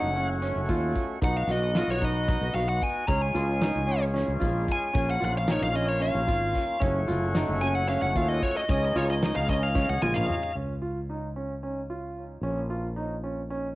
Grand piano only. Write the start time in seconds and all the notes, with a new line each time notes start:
0.16 C#4
0.42 C#4
0.69 F4
1.22 D#4
1.49 F#4
1.76 F4
2.02 D#4
2.28 D#4
2.55 F#4
3.08 C#4
3.34 F4
3.61 D#4
3.87 C#4
4.14 C#4
4.40 F4
4.93 C#4
5.20 F4
5.48 D#4
5.73 C#4
6.00 C#4
6.27 F4
6.80 C#4
7.08 F4
7.35 D#4
7.62 C#4
7.89 C#4
8.17 F4
8.70 C#4
8.96 F4
9.23 D#4
9.50 C#4
9.75 C#4
10.02 F4
10.56 C#4
10.82 F4
11.10 D#4
11.36 C#4
11.63 C#4
11.90 F4
12.43 C#4
12.70 F4
12.96 D#4
13.24 C#4
13.50 C#4